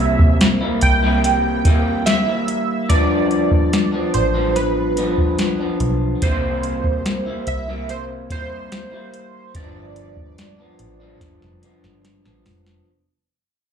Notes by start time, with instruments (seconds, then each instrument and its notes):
Already playing: fingered electric bass C2, clean electric guitar C3 G3 A#3 E4, synth keys E5
0.19 kick
0.41 snare, closed hi-hat
0.61 clean electric guitar G3 A#3 E4
0.81 fingered electric bass C2, synth keys G5, closed hi-hat
1.03 clean electric guitar C3 G3 A#3 E4
1.24 snare, closed hi-hat
1.65 clean electric guitar C3 G3 A#3 E4, kick, closed hi-hat
2.06 synth keys E5, snare, closed hi-hat
2.26 clean electric guitar G3 A#3 E4
2.48 fingered electric bass F1, closed hi-hat
2.89 clean electric guitar G2 F3 B3 D4, synth keys D5, kick, closed hi-hat
3.31 closed hi-hat
3.51 kick
3.73 snare, closed hi-hat
3.92 clean electric guitar F3 B3 D4
4.14 fingered electric bass A1, synth keys C5, closed hi-hat
4.34 clean electric guitar G2 F3 B3 D4
4.56 synth keys B4, snare, closed hi-hat
4.96 clean electric guitar G2 F3 B3 D4, closed hi-hat
5.18 kick
5.39 snare, closed hi-hat
5.60 clean electric guitar F3 B3 D4
5.80 fingered electric bass B1, closed hi-hat
6.22 fingered electric bass C2, clean electric guitar C3 G3 A#3 E4, synth keys C5, kick, closed hi-hat
6.63 closed hi-hat
6.84 kick
7.06 snare, closed hi-hat
7.26 clean electric guitar G3 A#3 E4
7.47 fingered electric bass C2, synth keys E5, closed hi-hat
7.68 clean electric guitar C3 G3 A#3 E4
7.89 synth keys C5, snare, closed hi-hat
8.30 clean electric guitar C3 G3 A#3 E4, synth keys C5, kick, closed hi-hat
8.72 snare, closed hi-hat
8.92 clean electric guitar G3 A#3 E4
9.13 fingered electric bass F1, closed hi-hat
9.54 fingered electric bass G1, clean electric guitar G2 F3 B3 D4, synth keys D5, kick, closed hi-hat
9.96 closed hi-hat
10.17 kick
10.38 snare, closed hi-hat
10.58 clean electric guitar F3 B3 D4
10.79 fingered electric bass A1, closed hi-hat
11.00 clean electric guitar G2 F3 B3 D4
11.21 fingered electric bass G1, kick, snare, closed hi-hat
11.42 fingered electric bass F1, snare
11.62 clean electric guitar G2 F3 B3 D4, closed hi-hat
11.84 fingered electric bass G1, snare
12.05 snare, closed hi-hat
12.24 fingered electric bass A1, clean electric guitar F3 B3 D4, snare
12.46 fingered electric bass F1, snare, open hi-hat
12.66 snare